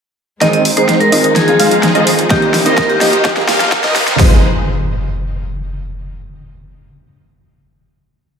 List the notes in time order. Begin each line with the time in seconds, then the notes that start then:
0.41 G#1 D#3 G#3 C4 D#4 G#4 C5 D#5, snare, closed hi-hat, riser
0.53 D#5, closed hi-hat
0.65 open hi-hat
0.76 G#2 D#3 G#3 C4 D#4 G#4 C5 D#5, closed hi-hat
0.89 snare, closed hi-hat
1.00 A#4, closed hi-hat
1.12 G#1 D#3 G#3 C4 D#4 F4 C5 D#5, open hi-hat
1.24 closed hi-hat
1.36 F3 G#4, snare, closed hi-hat
1.47 D#3 G#3 C4 F4 G#4, closed hi-hat
1.60 F1 G#3 D#4 F4 C5 F5, open hi-hat
1.71 closed hi-hat
1.83 snare, closed hi-hat
1.95 F2 D#3 G#3 C4 D#4 F4 C5 D#5, closed hi-hat
2.07 open hi-hat
2.19 closed hi-hat
2.30 C2 C3 D#3 A#3 C4 D#4 G4 C5 D#5, kick, snare, closed hi-hat
2.42 G4, closed hi-hat
2.54 snare, open hi-hat
2.65 C2 D#3 A#3 C4 D#4 G4 A#4 C5 D#5, closed hi-hat
2.78 A#4, kick, snare, closed hi-hat
2.90 G4, closed hi-hat
3.01 C2 F3 A#3 D#4 G4 C5 D#5, snare, open hi-hat
3.13 closed hi-hat
3.25 F3 G3 D#4, kick, snare, closed hi-hat
3.36 F3 A#3 D#4 G4, snare, closed hi-hat
3.48 A#3 D#4 F4 G4 F5, snare, open hi-hat
3.60 snare, closed hi-hat
3.72 kick, snare, closed hi-hat
3.83 D#2 F3 A#3 D#4 F4 G4 D#5, snare, closed hi-hat
3.96 snare, open hi-hat
4.08 snare, closed hi-hat
4.18 F1 F3 G#3 C4 D#4 F4 G#4 C5 D#5, kick, snare, open hi-hat, impact